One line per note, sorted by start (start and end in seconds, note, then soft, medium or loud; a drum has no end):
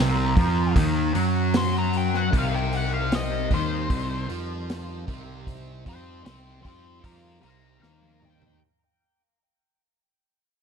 0.00 0.34 C2 medium
0.00 0.35 C3 medium
0.00 0.73 A#4 medium
0.37 0.73 F2 medium
0.37 0.75 F3 medium
0.37 kick medium
0.37 open hi-hat soft
0.75 1.12 D#2 loud
0.75 1.13 D#3 medium
0.75 kick medium
0.75 open hi-hat medium
1.14 2.29 F#2 medium
1.14 2.31 F#3 medium
1.14 open hi-hat medium
1.54 1.74 C6 loud
1.54 snare loud
1.54 open hi-hat medium
1.78 1.95 A#5 medium
1.93 2.17 G5 medium
1.93 open hi-hat soft
2.14 2.34 F#5 medium
2.14 snare soft
2.30 3.46 C2 medium
2.30 3.49 C3 loud
2.30 8.55 G3 medium
2.30 8.57 C4 medium
2.30 8.57 D#4 medium
2.30 5.42 A#4 medium
2.30 kick medium
2.30 open hi-hat medium
2.38 2.54 F5 medium
2.55 2.75 G5 medium
2.73 2.92 F#5 medium
2.73 open hi-hat soft
2.94 3.15 F5 medium
3.12 3.51 D#5 medium
3.12 snare loud
3.12 open hi-hat medium
3.51 3.87 D#2 medium
3.51 3.89 D#3 medium
3.51 4.28 C5 medium
3.51 kick medium
3.51 open hi-hat soft
3.90 4.26 C2 medium
3.90 4.27 C3 loud
3.90 kick medium
3.90 open hi-hat medium
4.28 5.03 F2 medium
4.28 5.05 F3 medium
4.28 open hi-hat soft
4.70 snare loud
4.70 open hi-hat medium
5.06 5.82 C2 medium
5.06 5.84 C3 medium
5.06 kick medium
5.06 open hi-hat soft
5.46 8.58 C5 medium
5.46 kick medium
5.46 open hi-hat medium
5.86 6.22 F2 medium
5.86 6.23 F3 medium
5.86 6.24 G5 medium
5.86 6.25 C6 medium
5.86 kick medium
5.86 open hi-hat soft
6.24 6.62 C2 medium
6.24 6.61 C3 loud
6.24 6.61 G5 medium
6.24 6.63 C6 medium
6.24 snare loud
6.24 open hi-hat medium
6.62 7.01 F2 medium
6.62 6.99 F3 medium
6.62 7.01 G5 medium
6.62 kick medium
6.62 open hi-hat soft
6.67 7.04 C6 medium
7.00 7.40 F2 medium
7.00 7.40 F3 loud
7.00 7.40 F5 medium
7.00 kick medium
7.00 open hi-hat medium
7.05 7.42 A#5 medium
7.40 7.80 C2 medium
7.40 7.79 C3 medium
7.40 7.79 F5 medium
7.40 7.81 A#5 medium
7.40 open hi-hat soft
7.80 8.57 D#2 medium
7.80 8.58 D#3 medium
7.80 8.18 F5 medium
7.80 8.20 A#5 medium
7.80 snare medium
8.02 high tom soft
8.22 8.62 G5 medium
8.22 mid tom medium
8.42 floor tom medium